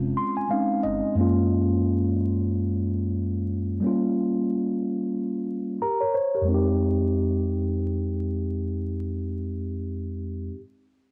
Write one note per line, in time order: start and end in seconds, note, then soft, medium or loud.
0.00 0.11 F1 medium
0.00 0.45 G#3 medium
0.00 0.45 C4 medium
0.00 0.47 C#4 medium
0.00 0.47 F4 medium
0.17 0.35 C6 medium
0.37 0.49 G#5 medium
0.49 1.15 G#3 medium
0.49 1.16 C4 soft
0.49 1.17 C#4 soft
0.49 1.18 D#4 medium
0.49 0.81 F5 medium
0.83 0.99 G1 medium
0.83 1.14 D#5 medium
1.15 3.78 F#2 medium
1.15 3.79 G#3 medium
1.15 3.80 A#3 medium
1.19 3.81 C#4 medium
1.19 3.81 F4 medium
3.80 5.78 G3 medium
3.80 5.79 A#3 medium
3.80 5.80 C#4 medium
3.87 5.81 F4 medium
5.82 6.01 G4 soft
5.82 6.00 A#4 medium
5.82 6.14 A#5 medium
6.01 6.15 A#4 medium
6.01 6.13 C#5 medium
6.14 6.34 C5 medium
6.14 6.46 C#5 medium
6.35 6.53 G4 soft
6.35 6.67 A#4 medium
6.42 10.48 F2 medium
6.42 10.51 G#3 medium
6.48 10.54 C4 medium
6.48 10.57 D#4 medium
6.54 10.60 G4 medium